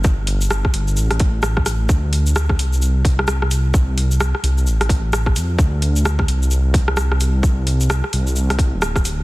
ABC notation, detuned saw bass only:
X:1
M:4/4
L:1/16
Q:"Swing 16ths" 1/4=130
K:Gdor
V:1 name="Detuned saw bass" clef=bass
G,,,4- G,,, z G,,,2 A,,,2 A,,,6 | D,,6 C,,8- C,,2- | C,,4- C,, z C,,2 A,,,6 F,,2 | D,,6 C,,8- C,,2- |
C,,4- C,, z C,,4- C,, D,,,4- D,,, |]